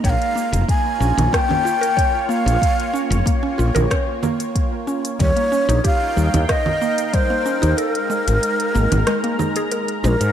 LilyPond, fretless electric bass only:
\new Staff \with { instrumentName = "Fretless electric bass" } { \clef bass \time 4/4 \key bes \dorian \tempo 4 = 93 bes,,16 r8 f,,16 r8 bes,,16 bes,,16 r4. r16 bes,,16 | r8. f,,16 r8 bes,,16 bes,,16 r2 | ees,16 r8 bes,,16 r8 ees,16 ees,16 r4. r16 ees,16 | r8. aes,,16 r8 aes,,16 aes,,16 r4. bes,,16 aes,16 | }